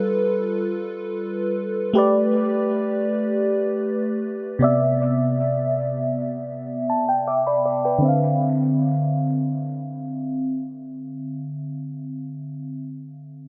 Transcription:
Already playing: G3 F4 A4 B4
1.93 A3 G4 B4
1.98 D5
4.59 C3 B3 D5
4.64 E5
6.90 A5
7.09 G5
7.27 E5 D6
7.47 D5 B5
7.66 D5
7.85 B4 G5
7.98 D3 C4
8.05 E5 F5

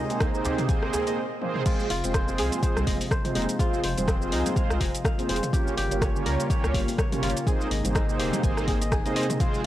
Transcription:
Already playing: C3 G#3 D#4 F4 G#4 A#4 C#5 D#5
0.10 A#3 C4 D#4 G#4 C5, closed hi-hat, shaker
0.20 D#4, kick, cross-stick, closed hi-hat, djembe tone, shaker
0.34 A#3 C4 D#4 G#4 C5, shaker
0.45 G4, closed hi-hat, djembe slap, djembe tone, shaker
0.58 closed hi-hat, mid tom, shaker
0.69 A#3 C4 D#4 G#4 C5 G#5, kick, closed hi-hat, djembe tone, shaker
0.83 cross-stick
0.93 G#4, closed hi-hat, djembe slap, djembe tone, shaker
1.07 A#3 C4 D#4 G#4 C5 D#5, closed hi-hat, shaker
1.42 A#3 C4 D#4 G#4 C5, high tom
1.56 mid tom
1.66 C3 F3 G#3 C4 F4 C5, kick, closed hi-hat, crash, shaker
1.79 muted conga, shaker
1.90 F1 F4, open hi-hat
2.04 F1 G#3 C4 F4 G#4 C5, closed hi-hat, muted conga, high conga, shaker
2.14 C5, kick, cross-stick, closed hi-hat, shaker
2.28 G#3 C4 F4 G#4 C5, muted conga, shaker
2.38 C2 G#4, open hi-hat
2.52 closed hi-hat, high conga, shaker
2.63 G#3 C4 F4 G#4 C5, kick, closed hi-hat, muted conga, shaker
2.76 C2, cross-stick, high conga, low conga, shaker
2.87 F1 D#5, kick, open hi-hat, muted conga, high conga
3.00 open hi-hat, high conga, shaker
3.11 C5, kick, cross-stick, shaker
3.25 G#3 C4 F4 G#4 C5, closed hi-hat, mid tom, shaker
3.35 F1 D#4, open hi-hat, muted conga, high conga
3.42 closed hi-hat
3.49 closed hi-hat, shaker
3.59 G#3 C4 F4 G#4 C5, kick, closed hi-hat, shaker
3.73 muted conga, shaker
3.84 F1 C5, open hi-hat
3.98 F1 G#3 C4 F4 G#4 C5, closed hi-hat, muted conga, low conga, shaker
4.08 C4, kick, cross-stick, closed hi-hat, shaker
4.21 G#3 C4 F4 G#4 C5, muted conga, shaker
4.32 C2 D#4, open hi-hat
4.46 closed hi-hat, high conga, low conga, shaker
4.56 G#3 C4 F4 G#4 C5 F5, kick, closed hi-hat, shaker
4.70 C2, cross-stick, shaker
4.80 F1 D#5, kick, open hi-hat, muted conga, high conga
4.95 closed hi-hat, shaker
5.04 F5, kick, cross-stick, muted conga, shaker
5.18 G#3 C4 F4 G#4 C5, closed hi-hat, high conga, shaker
5.29 F1 C5, open hi-hat, muted conga, high conga
5.36 closed hi-hat
5.43 closed hi-hat, mid tom, shaker
5.53 C#3 G3 A#3 C#4 F4 G4 C#5, kick, closed hi-hat, shaker
5.67 muted conga, shaker
5.77 G1 G4, open hi-hat
5.91 G1 A#3 C#4 F4 G4 C#5, closed hi-hat, muted conga, high conga, shaker
6.01 C#5, kick, cross-stick, closed hi-hat, shaker
6.15 A#3 C#4 F4 G4 C#5, muted conga, shaker
6.26 C#2 A#4, open hi-hat
6.40 closed hi-hat, high conga, shaker
6.50 A#3 C#4 F4 G4 C#5, kick, closed hi-hat, muted conga, shaker
6.64 C#2, cross-stick, high conga, low conga, shaker
6.74 G1 F5, kick, open hi-hat, muted conga, high conga
6.88 open hi-hat, high conga, shaker
6.98 C#5, kick, cross-stick, shaker
7.12 A#3 C#4 F4 G4 C#5, closed hi-hat, mid tom, shaker
7.22 G1 F4, open hi-hat, muted conga, high conga
7.30 closed hi-hat
7.37 closed hi-hat, shaker
7.47 C3 G#3 A#3 C4 D#4 G#4 C5, kick, closed hi-hat, shaker
7.60 muted conga, shaker
7.71 G#1 D#5, open hi-hat
7.84 G#1 A#3 C4 D#4 G#4 C5, closed hi-hat, muted conga, high conga, low conga, shaker
7.95 D#4, kick, cross-stick, closed hi-hat, shaker
8.08 A#3 C4 D#4 G#4 C5, muted conga, shaker
8.19 D#1 G4, open hi-hat
8.32 closed hi-hat, mid tom, high conga, low conga, shaker
8.43 G#1 A#3 C4 D#4 G#4 C5 G#5, kick, closed hi-hat, muted conga, shaker
8.57 cross-stick, shaker
8.68 G#4, kick, open hi-hat, muted conga, high conga
8.81 D#5, closed hi-hat, shaker
8.92 G#4, kick, cross-stick, shaker
9.05 A#3 C4 D#4 G#4 C5 D#5, closed hi-hat, high conga, shaker
9.16 D#5, open hi-hat, muted conga, high conga
9.23 closed hi-hat
9.30 closed hi-hat, mid tom, shaker
9.40 F3 G#3 C4 F4 G#4 C5, kick, closed hi-hat, shaker
9.54 muted conga, shaker

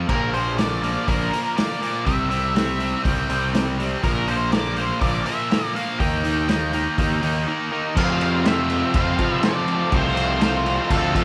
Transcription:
0.08 A#1 A#2 F3 A#3 A#4, kick, crash
0.34 A#2 F3 A#3 C5, open hi-hat
0.57 A#2 F3 A#3 D5, snare, open hi-hat
0.82 A#2 F3 A#3, open hi-hat
1.08 A#1 A#2 F3 A#3 A#4, kick, open hi-hat
1.32 A#2 F3 A#3, open hi-hat
1.57 A#2 F3 A#3 D5, snare, open hi-hat
1.81 A#2 F3 A#3, open hi-hat
2.05 C2 C3 G3 C4 E5, kick, open hi-hat
2.29 C3 G3 C4 E5, open hi-hat
2.55 C3 G3 C4, snare, open hi-hat
2.80 C3 G3 C4, open hi-hat
3.04 C2 C3 G3 C4 G5, kick, open hi-hat
3.29 C2 C3 G3 C4, open hi-hat
3.54 C3 G3 C4, snare, open hi-hat
3.79 C3 G3 C4, open hi-hat
4.03 A#1 A#2 F3 A#3 A#4, kick, open hi-hat
4.28 A#2 F3 A#3 C5, open hi-hat
4.52 A#2 F3 A#3 D5, snare, open hi-hat
4.77 A#2 F3 A#3 C5, open hi-hat
5.01 A#1 A#2 F3 A#3 D5, kick, open hi-hat
5.26 A#2 F3 A#3 E5, open hi-hat
5.51 A#2 F3 A#3, snare, open hi-hat
5.75 A#2 F3 A#3 F5, open hi-hat
5.99 D#2 D#3 A#3 D#4 G5, kick, open hi-hat
6.24 D#3 A#3 D#4, open hi-hat
6.49 D#3 A#3 D#4, snare, open hi-hat
6.73 D#3 A#3 D#4, open hi-hat
6.98 D#2 D#3 A#3 D#4, kick, open hi-hat
7.22 D#2 D#3 A#3 D#4, open hi-hat
7.48 D#3 A#3 D#4
7.72 D#3 A#3 D#4
7.96 F2 C3 F3 A3 C4 F4 C5 F5, kick, crash
8.21 F3 A3 C4 F4, crash
8.45 F3 A3 C4 F4 C5 E5, snare, crash
8.70 F3 A3 C4 F4, crash
8.94 F2 C3 F3 A3 C4 F4 C5 F5, kick, crash
9.18 F3 A3 C4 F4, kick, crash
9.29 B4 E5
9.42 F3 A3 C4 F4 A4 D5, snare, crash
9.66 F2 C3 F3, crash
9.91 C2 F2 C3 F3 A3 C4 F4 C5, kick, crash
10.15 F3 A3 C4 F4, crash
10.39 F3 A3 C4 F4 C5, snare, crash
10.63 F3 A3 C4 F4, crash
10.88 D2 F2 C3 F3 A3 C4 F4 A4, kick, crash
11.12 F3 A3 C4 F4 A4, kick, crash

